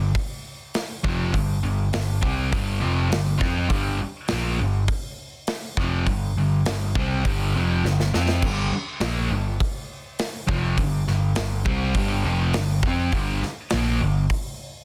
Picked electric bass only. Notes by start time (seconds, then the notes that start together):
Already playing: G1
1.05 F1
1.34 G1
1.64 G1
1.95 G1
2.22 C2
2.53 G1
2.84 F1
3.14 G1
3.41 F2
3.70 G1
4.03 muted picked electric bass stroke
4.32 A#1
4.62 G1
5.77 F1
6.07 G1
6.36 G1
6.68 G1
6.95 C2
7.25 G1
7.56 F1
7.85 G1
8.14 F2
8.43 G1
8.73 muted picked electric bass stroke
9.01 A#1
9.29 G1
10.49 F1
10.78 G1
11.09 G1
11.39 G1
11.66 C2
11.95 G1
12.25 F1
12.55 G1
12.83 F2
13.13 G1
13.43 muted picked electric bass stroke
13.73 A#1
14.01 G1